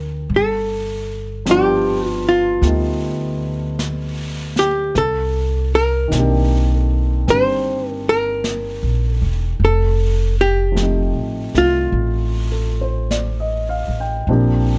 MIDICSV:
0, 0, Header, 1, 5, 480
1, 0, Start_track
1, 0, Tempo, 1165049
1, 124, Time_signature, 4, 2, 24, 8
1, 6091, End_track
2, 0, Start_track
2, 0, Title_t, "Hollow-body jazz guitar"
2, 0, Program_c, 0, 26
2, 0, Note_on_c, 0, 70, 68
2, 118, Note_off_c, 0, 70, 0
2, 149, Note_on_c, 0, 69, 62
2, 620, Note_off_c, 0, 69, 0
2, 622, Note_on_c, 0, 67, 65
2, 865, Note_off_c, 0, 67, 0
2, 865, Note_on_c, 0, 65, 65
2, 939, Note_off_c, 0, 65, 0
2, 942, Note_on_c, 0, 65, 70
2, 1891, Note_on_c, 0, 67, 71
2, 1915, Note_off_c, 0, 65, 0
2, 2049, Note_off_c, 0, 67, 0
2, 2051, Note_on_c, 0, 69, 72
2, 2368, Note_off_c, 0, 69, 0
2, 2369, Note_on_c, 0, 70, 78
2, 2785, Note_off_c, 0, 70, 0
2, 2785, Note_on_c, 0, 69, 78
2, 3008, Note_off_c, 0, 69, 0
2, 3009, Note_on_c, 0, 72, 80
2, 3256, Note_off_c, 0, 72, 0
2, 3256, Note_on_c, 0, 70, 80
2, 3330, Note_off_c, 0, 70, 0
2, 3334, Note_on_c, 0, 70, 81
2, 3750, Note_off_c, 0, 70, 0
2, 3750, Note_on_c, 0, 69, 81
2, 3972, Note_off_c, 0, 69, 0
2, 3974, Note_on_c, 0, 69, 68
2, 4266, Note_off_c, 0, 69, 0
2, 4289, Note_on_c, 0, 67, 75
2, 4769, Note_off_c, 0, 67, 0
2, 4770, Note_on_c, 0, 65, 66
2, 5712, Note_off_c, 0, 65, 0
2, 6091, End_track
3, 0, Start_track
3, 0, Title_t, "Grand piano"
3, 0, Program_c, 1, 0
3, 0, Control_c, 1, 64, 127
3, 0, Note_on_c, 1, 50, 42
3, 0, Note_on_c, 1, 53, 36
3, 0, Note_on_c, 1, 55, 40
3, 0, Note_on_c, 1, 58, 37
3, 0, Note_on_c, 1, 60, 33
3, 0, Note_on_c, 1, 62, 32
3, 0, Note_on_c, 1, 65, 47
3, 0, Note_on_c, 1, 67, 43
3, 124, Note_off_c, 1, 53, 0
3, 125, Note_off_c, 1, 60, 0
3, 126, Note_off_c, 1, 50, 0
3, 126, Note_off_c, 1, 55, 0
3, 127, Note_off_c, 1, 58, 0
3, 128, Note_off_c, 1, 62, 0
3, 129, Note_off_c, 1, 65, 0
3, 130, Note_off_c, 1, 67, 0
3, 130, Control_c, 1, 64, 0
3, 199, Control_c, 1, 64, 127
3, 600, Note_on_c, 1, 53, 49
3, 604, Note_on_c, 1, 55, 43
3, 607, Note_on_c, 1, 59, 43
3, 615, Note_on_c, 1, 62, 46
3, 616, Note_on_c, 1, 65, 56
3, 1077, Note_off_c, 1, 55, 0
3, 1083, Note_on_c, 1, 55, 39
3, 1084, Note_off_c, 1, 59, 0
3, 1089, Note_on_c, 1, 57, 37
3, 1090, Note_on_c, 1, 59, 37
3, 1097, Note_on_c, 1, 63, 42
3, 2035, Note_off_c, 1, 53, 0
3, 2038, Note_off_c, 1, 55, 0
3, 2041, Note_off_c, 1, 57, 0
3, 2041, Note_off_c, 1, 59, 0
3, 2042, Control_c, 1, 64, 0
3, 2043, Note_off_c, 1, 62, 0
3, 2044, Note_off_c, 1, 65, 0
3, 2045, Note_off_c, 1, 63, 0
3, 2106, Control_c, 1, 64, 127
3, 2504, Note_on_c, 1, 51, 47
3, 2514, Note_on_c, 1, 58, 42
3, 2525, Note_on_c, 1, 60, 41
3, 2535, Note_on_c, 1, 62, 43
3, 2547, Note_on_c, 1, 67, 49
3, 2989, Note_off_c, 1, 60, 0
3, 2995, Note_off_c, 1, 62, 0
3, 2995, Note_on_c, 1, 60, 40
3, 3001, Note_off_c, 1, 67, 0
3, 3001, Note_on_c, 1, 62, 33
3, 3007, Note_on_c, 1, 67, 42
3, 3949, Note_off_c, 1, 51, 0
3, 3954, Note_off_c, 1, 58, 0
3, 3955, Note_off_c, 1, 60, 0
3, 3958, Note_off_c, 1, 62, 0
3, 3961, Note_off_c, 1, 67, 0
3, 3961, Control_c, 1, 64, 0
3, 4037, Control_c, 1, 64, 127
3, 4416, Note_on_c, 1, 53, 43
3, 4427, Note_on_c, 1, 57, 38
3, 4440, Note_on_c, 1, 60, 36
3, 4452, Note_on_c, 1, 63, 39
3, 4463, Note_on_c, 1, 67, 42
3, 4752, Note_off_c, 1, 57, 0
3, 4758, Note_on_c, 1, 57, 37
3, 4771, Note_on_c, 1, 65, 38
3, 5157, Note_on_c, 1, 69, 38
3, 5279, Note_on_c, 1, 72, 41
3, 5307, Note_off_c, 1, 69, 0
3, 5400, Note_on_c, 1, 74, 39
3, 5447, Note_off_c, 1, 72, 0
3, 5521, Note_on_c, 1, 75, 42
3, 5624, Note_off_c, 1, 74, 0
3, 5641, Note_on_c, 1, 77, 45
3, 5726, Note_off_c, 1, 75, 0
3, 5769, Note_on_c, 1, 79, 46
3, 5791, Note_off_c, 1, 77, 0
3, 5873, Note_off_c, 1, 53, 0
3, 5883, Note_off_c, 1, 60, 0
3, 5884, Note_off_c, 1, 57, 0
3, 5885, Note_on_c, 1, 53, 51
3, 5889, Note_off_c, 1, 67, 0
3, 5889, Control_c, 1, 64, 0
3, 5889, Note_on_c, 1, 58, 47
3, 5889, Note_on_c, 1, 60, 43
3, 5890, Note_on_c, 1, 62, 45
3, 5891, Note_off_c, 1, 63, 0
3, 5891, Note_off_c, 1, 65, 0
3, 5895, Note_on_c, 1, 67, 52
3, 5934, Note_off_c, 1, 79, 0
3, 5965, Control_c, 1, 64, 127
3, 6091, Note_off_c, 1, 53, 0
3, 6091, Note_off_c, 1, 58, 0
3, 6091, Note_off_c, 1, 60, 0
3, 6091, Note_off_c, 1, 62, 0
3, 6091, Note_off_c, 1, 67, 0
3, 6091, End_track
4, 0, Start_track
4, 0, Title_t, "Upright bass"
4, 0, Program_c, 2, 32
4, 0, Note_on_c, 2, 38, 60
4, 106, Note_off_c, 2, 38, 0
4, 121, Note_on_c, 2, 31, 67
4, 1063, Note_off_c, 2, 31, 0
4, 1077, Note_on_c, 2, 38, 67
4, 2018, Note_off_c, 2, 38, 0
4, 2039, Note_on_c, 2, 36, 69
4, 2501, Note_off_c, 2, 36, 0
4, 2518, Note_on_c, 2, 35, 64
4, 2980, Note_off_c, 2, 35, 0
4, 2998, Note_on_c, 2, 31, 69
4, 3620, Note_off_c, 2, 31, 0
4, 3636, Note_on_c, 2, 34, 52
4, 3785, Note_off_c, 2, 34, 0
4, 3797, Note_on_c, 2, 28, 55
4, 3945, Note_off_c, 2, 28, 0
4, 3953, Note_on_c, 2, 29, 66
4, 4577, Note_off_c, 2, 29, 0
4, 4594, Note_on_c, 2, 33, 50
4, 4743, Note_off_c, 2, 33, 0
4, 4755, Note_on_c, 2, 36, 56
4, 4905, Note_off_c, 2, 36, 0
4, 4912, Note_on_c, 2, 33, 66
4, 5701, Note_off_c, 2, 33, 0
4, 5719, Note_on_c, 2, 33, 53
4, 5871, Note_off_c, 2, 33, 0
4, 5879, Note_on_c, 2, 34, 66
4, 6091, Note_off_c, 2, 34, 0
4, 6091, End_track
5, 0, Start_track
5, 0, Title_t, "Drums"
5, 125, Note_on_c, 9, 25, 29
5, 603, Note_off_c, 9, 25, 0
5, 603, Note_on_c, 9, 25, 32
5, 603, Note_on_c, 9, 38, 36
5, 603, Note_on_c, 9, 44, 42
5, 644, Note_off_c, 9, 38, 0
5, 644, Note_off_c, 9, 44, 0
5, 1081, Note_off_c, 9, 25, 0
5, 1081, Note_on_c, 9, 25, 35
5, 1081, Note_on_c, 9, 38, 25
5, 1122, Note_off_c, 9, 38, 0
5, 1562, Note_off_c, 9, 25, 0
5, 1562, Note_on_c, 9, 25, 35
5, 1562, Note_on_c, 9, 38, 37
5, 1562, Note_on_c, 9, 44, 43
5, 1603, Note_off_c, 9, 38, 0
5, 1603, Note_off_c, 9, 44, 0
5, 1879, Note_on_c, 9, 38, 25
5, 1920, Note_off_c, 9, 38, 0
5, 2040, Note_off_c, 9, 25, 0
5, 2040, Note_on_c, 9, 25, 29
5, 2040, Note_on_c, 9, 38, 26
5, 2081, Note_off_c, 9, 38, 0
5, 2520, Note_off_c, 9, 25, 0
5, 2520, Note_on_c, 9, 25, 28
5, 2520, Note_on_c, 9, 38, 38
5, 2520, Note_on_c, 9, 44, 48
5, 2561, Note_off_c, 9, 38, 0
5, 2561, Note_off_c, 9, 44, 0
5, 2999, Note_off_c, 9, 25, 0
5, 2999, Note_on_c, 9, 25, 36
5, 2999, Note_on_c, 9, 38, 26
5, 3041, Note_off_c, 9, 38, 0
5, 3477, Note_off_c, 9, 25, 0
5, 3477, Note_on_c, 9, 25, 36
5, 3477, Note_on_c, 9, 38, 38
5, 3477, Note_on_c, 9, 44, 49
5, 3519, Note_off_c, 9, 38, 0
5, 3519, Note_off_c, 9, 44, 0
5, 3955, Note_off_c, 9, 25, 0
5, 3955, Note_on_c, 9, 25, 26
5, 4435, Note_off_c, 9, 25, 0
5, 4435, Note_on_c, 9, 25, 31
5, 4435, Note_on_c, 9, 38, 36
5, 4435, Note_on_c, 9, 44, 40
5, 4476, Note_off_c, 9, 38, 0
5, 4476, Note_off_c, 9, 44, 0
5, 4758, Note_on_c, 9, 38, 24
5, 4799, Note_off_c, 9, 38, 0
5, 4917, Note_off_c, 9, 25, 0
5, 4917, Note_on_c, 9, 25, 30
5, 5400, Note_off_c, 9, 25, 0
5, 5400, Note_on_c, 9, 25, 28
5, 5400, Note_on_c, 9, 38, 36
5, 5400, Note_on_c, 9, 44, 39
5, 5441, Note_off_c, 9, 38, 0
5, 5441, Note_off_c, 9, 44, 0
5, 5883, Note_off_c, 9, 25, 0
5, 5883, Note_on_c, 9, 25, 38
5, 6091, Note_off_c, 9, 25, 0
5, 6091, End_track
0, 0, End_of_file